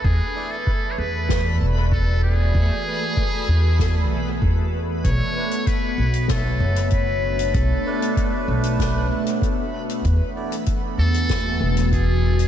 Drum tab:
HH |----------------|----------------|x--xx--xx--xx--x|x--xx--xx--xx--x|
SD |--------o-------|--------o-------|--------o-------|--------o-------|
BD |o---o---o---o---|o---o---o---o---|o---o---o---o---|o---o---o---o---|

HH |x--xx--xx--xx--x|
SD |--------o-------|
BD |o---o---o---o---|